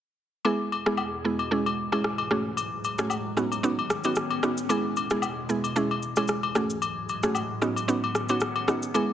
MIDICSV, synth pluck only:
0, 0, Header, 1, 2, 480
1, 0, Start_track
1, 0, Tempo, 530973
1, 407, Time_signature, 4, 2, 24, 8
1, 8254, End_track
2, 0, Start_track
2, 0, Title_t, "Synth pluck"
2, 0, Program_c, 0, 84
2, 405, Note_on_c, 0, 56, 90
2, 406, Note_on_c, 0, 59, 78
2, 408, Note_on_c, 0, 64, 80
2, 410, Note_on_c, 0, 68, 98
2, 746, Note_off_c, 0, 56, 0
2, 747, Note_off_c, 0, 59, 0
2, 747, Note_off_c, 0, 64, 0
2, 749, Note_off_c, 0, 68, 0
2, 777, Note_on_c, 0, 56, 69
2, 778, Note_on_c, 0, 59, 65
2, 781, Note_on_c, 0, 64, 64
2, 782, Note_on_c, 0, 68, 82
2, 899, Note_off_c, 0, 56, 0
2, 899, Note_off_c, 0, 59, 0
2, 901, Note_off_c, 0, 64, 0
2, 901, Note_off_c, 0, 68, 0
2, 1125, Note_on_c, 0, 56, 71
2, 1128, Note_on_c, 0, 59, 67
2, 1130, Note_on_c, 0, 64, 66
2, 1131, Note_on_c, 0, 68, 79
2, 1269, Note_off_c, 0, 56, 0
2, 1270, Note_off_c, 0, 59, 0
2, 1271, Note_off_c, 0, 64, 0
2, 1272, Note_off_c, 0, 68, 0
2, 1366, Note_on_c, 0, 56, 87
2, 1368, Note_on_c, 0, 61, 81
2, 1369, Note_on_c, 0, 64, 81
2, 1371, Note_on_c, 0, 68, 97
2, 1509, Note_off_c, 0, 56, 0
2, 1510, Note_off_c, 0, 61, 0
2, 1511, Note_off_c, 0, 64, 0
2, 1512, Note_off_c, 0, 68, 0
2, 1737, Note_on_c, 0, 56, 77
2, 1739, Note_on_c, 0, 61, 68
2, 1740, Note_on_c, 0, 64, 69
2, 1743, Note_on_c, 0, 68, 84
2, 2060, Note_off_c, 0, 56, 0
2, 2061, Note_off_c, 0, 61, 0
2, 2062, Note_off_c, 0, 64, 0
2, 2063, Note_off_c, 0, 68, 0
2, 2087, Note_on_c, 0, 57, 72
2, 2088, Note_on_c, 0, 61, 69
2, 2090, Note_on_c, 0, 66, 66
2, 2091, Note_on_c, 0, 68, 77
2, 2310, Note_off_c, 0, 57, 0
2, 2310, Note_off_c, 0, 61, 0
2, 2311, Note_off_c, 0, 66, 0
2, 2312, Note_off_c, 0, 68, 0
2, 2697, Note_on_c, 0, 57, 71
2, 2699, Note_on_c, 0, 61, 66
2, 2700, Note_on_c, 0, 66, 66
2, 2703, Note_on_c, 0, 68, 84
2, 2819, Note_off_c, 0, 57, 0
2, 2820, Note_off_c, 0, 61, 0
2, 2820, Note_off_c, 0, 66, 0
2, 2822, Note_off_c, 0, 68, 0
2, 3044, Note_on_c, 0, 59, 73
2, 3046, Note_on_c, 0, 61, 64
2, 3047, Note_on_c, 0, 63, 67
2, 3050, Note_on_c, 0, 66, 82
2, 3188, Note_off_c, 0, 59, 0
2, 3189, Note_off_c, 0, 61, 0
2, 3190, Note_off_c, 0, 63, 0
2, 3191, Note_off_c, 0, 66, 0
2, 3284, Note_on_c, 0, 59, 93
2, 3285, Note_on_c, 0, 61, 84
2, 3287, Note_on_c, 0, 63, 82
2, 3289, Note_on_c, 0, 66, 97
2, 3428, Note_off_c, 0, 59, 0
2, 3428, Note_off_c, 0, 61, 0
2, 3429, Note_off_c, 0, 63, 0
2, 3431, Note_off_c, 0, 66, 0
2, 3657, Note_on_c, 0, 59, 78
2, 3659, Note_on_c, 0, 61, 66
2, 3659, Note_on_c, 0, 63, 68
2, 3662, Note_on_c, 0, 66, 85
2, 3779, Note_off_c, 0, 59, 0
2, 3780, Note_off_c, 0, 61, 0
2, 3780, Note_off_c, 0, 63, 0
2, 3781, Note_off_c, 0, 66, 0
2, 4003, Note_on_c, 0, 59, 71
2, 4005, Note_on_c, 0, 61, 69
2, 4007, Note_on_c, 0, 63, 66
2, 4009, Note_on_c, 0, 66, 78
2, 4147, Note_off_c, 0, 59, 0
2, 4148, Note_off_c, 0, 61, 0
2, 4149, Note_off_c, 0, 63, 0
2, 4150, Note_off_c, 0, 66, 0
2, 4244, Note_on_c, 0, 56, 88
2, 4245, Note_on_c, 0, 59, 83
2, 4247, Note_on_c, 0, 64, 80
2, 4250, Note_on_c, 0, 68, 99
2, 4586, Note_off_c, 0, 56, 0
2, 4586, Note_off_c, 0, 59, 0
2, 4587, Note_off_c, 0, 64, 0
2, 4589, Note_off_c, 0, 68, 0
2, 4616, Note_on_c, 0, 56, 74
2, 4618, Note_on_c, 0, 59, 65
2, 4619, Note_on_c, 0, 64, 69
2, 4622, Note_on_c, 0, 68, 78
2, 4738, Note_off_c, 0, 56, 0
2, 4739, Note_off_c, 0, 59, 0
2, 4740, Note_off_c, 0, 64, 0
2, 4741, Note_off_c, 0, 68, 0
2, 4964, Note_on_c, 0, 56, 75
2, 4966, Note_on_c, 0, 59, 66
2, 4967, Note_on_c, 0, 64, 66
2, 4970, Note_on_c, 0, 68, 82
2, 5108, Note_off_c, 0, 56, 0
2, 5109, Note_off_c, 0, 59, 0
2, 5110, Note_off_c, 0, 64, 0
2, 5111, Note_off_c, 0, 68, 0
2, 5205, Note_on_c, 0, 56, 91
2, 5207, Note_on_c, 0, 61, 82
2, 5209, Note_on_c, 0, 64, 84
2, 5210, Note_on_c, 0, 68, 99
2, 5348, Note_off_c, 0, 56, 0
2, 5350, Note_off_c, 0, 61, 0
2, 5350, Note_off_c, 0, 64, 0
2, 5351, Note_off_c, 0, 68, 0
2, 5577, Note_on_c, 0, 56, 73
2, 5578, Note_on_c, 0, 61, 68
2, 5581, Note_on_c, 0, 64, 68
2, 5582, Note_on_c, 0, 68, 81
2, 5900, Note_off_c, 0, 56, 0
2, 5901, Note_off_c, 0, 61, 0
2, 5902, Note_off_c, 0, 64, 0
2, 5902, Note_off_c, 0, 68, 0
2, 5924, Note_on_c, 0, 57, 72
2, 5927, Note_on_c, 0, 61, 64
2, 5928, Note_on_c, 0, 66, 67
2, 5930, Note_on_c, 0, 68, 78
2, 6148, Note_off_c, 0, 57, 0
2, 6149, Note_off_c, 0, 61, 0
2, 6150, Note_off_c, 0, 66, 0
2, 6151, Note_off_c, 0, 68, 0
2, 6537, Note_on_c, 0, 57, 71
2, 6539, Note_on_c, 0, 61, 65
2, 6541, Note_on_c, 0, 66, 63
2, 6542, Note_on_c, 0, 68, 80
2, 6659, Note_off_c, 0, 57, 0
2, 6660, Note_off_c, 0, 61, 0
2, 6661, Note_off_c, 0, 66, 0
2, 6661, Note_off_c, 0, 68, 0
2, 6884, Note_on_c, 0, 59, 76
2, 6886, Note_on_c, 0, 61, 69
2, 6887, Note_on_c, 0, 63, 68
2, 6890, Note_on_c, 0, 66, 79
2, 7028, Note_off_c, 0, 59, 0
2, 7029, Note_off_c, 0, 61, 0
2, 7030, Note_off_c, 0, 63, 0
2, 7031, Note_off_c, 0, 66, 0
2, 7124, Note_on_c, 0, 59, 92
2, 7126, Note_on_c, 0, 61, 81
2, 7127, Note_on_c, 0, 63, 84
2, 7128, Note_on_c, 0, 66, 98
2, 7268, Note_off_c, 0, 59, 0
2, 7269, Note_off_c, 0, 61, 0
2, 7270, Note_off_c, 0, 63, 0
2, 7270, Note_off_c, 0, 66, 0
2, 7497, Note_on_c, 0, 59, 75
2, 7498, Note_on_c, 0, 61, 70
2, 7500, Note_on_c, 0, 63, 70
2, 7501, Note_on_c, 0, 66, 84
2, 7619, Note_off_c, 0, 59, 0
2, 7619, Note_off_c, 0, 61, 0
2, 7620, Note_off_c, 0, 63, 0
2, 7621, Note_off_c, 0, 66, 0
2, 7844, Note_on_c, 0, 59, 74
2, 7847, Note_on_c, 0, 61, 65
2, 7848, Note_on_c, 0, 63, 68
2, 7850, Note_on_c, 0, 66, 80
2, 7988, Note_off_c, 0, 59, 0
2, 7989, Note_off_c, 0, 61, 0
2, 7990, Note_off_c, 0, 63, 0
2, 7991, Note_off_c, 0, 66, 0
2, 8085, Note_on_c, 0, 56, 84
2, 8088, Note_on_c, 0, 59, 79
2, 8089, Note_on_c, 0, 64, 82
2, 8092, Note_on_c, 0, 68, 94
2, 8254, Note_off_c, 0, 56, 0
2, 8254, Note_off_c, 0, 59, 0
2, 8254, Note_off_c, 0, 64, 0
2, 8254, Note_off_c, 0, 68, 0
2, 8254, End_track
0, 0, End_of_file